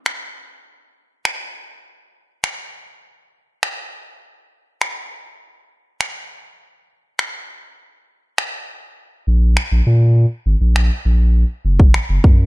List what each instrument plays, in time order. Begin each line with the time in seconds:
0.06 finger snap
1.25 finger snap
2.44 finger snap
3.63 finger snap
4.81 finger snap
6.01 finger snap
7.19 finger snap
8.38 finger snap
9.27 sub bass A#1
9.57 finger snap
9.72 sub bass A#1
9.87 sub bass A#2
10.46 sub bass G#1
10.61 sub bass A#1
10.76 finger snap
11.05 sub bass A#1
11.65 sub bass F#1
11.80 kick
11.94 finger snap
12.09 sub bass F#1
12.24 sub bass F#2, kick